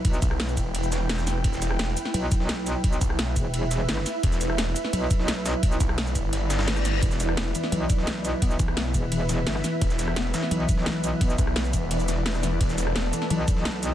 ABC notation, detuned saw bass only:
X:1
M:4/4
L:1/8
Q:1/4=172
K:Em
V:1 name="Detuned saw bass" clef=bass
z B,,,2 E,,,4- E,,, | E,,,3 z4 z | z B,,,2 z4 z | E,,,3 z4 z |
z B,,,2 G,,,4- G,,, | E,,,3 z4 z | z B,,,2 z4 z | E,,,3 z4 z |
z B,,,2 E,,,4- E,,, | E,,,3 z4 z |]